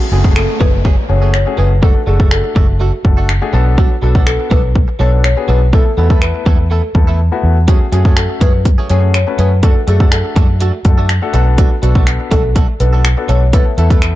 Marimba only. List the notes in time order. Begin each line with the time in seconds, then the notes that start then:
Already playing: F#4
0.12 F#4
0.36 A4
0.60 B4
1.10 C#5
1.34 C#5
1.58 B4
1.83 A4
2.07 G#4
2.32 A4
2.81 F#4
3.78 F#4
4.02 F#4
4.27 A4
4.51 B4
5.00 C#5
5.24 C#5
5.48 B4
5.73 A4
5.97 A4
6.22 B4
6.70 A4
7.68 F#4
7.92 F#4
8.17 A4
8.41 B4
8.90 C#5
9.14 C#5
9.39 B4
9.63 A4
9.88 G#4
10.12 A4
10.61 F#4
11.58 F#4
11.83 F#4
12.31 A4
12.80 B4
13.29 C#5
13.54 B4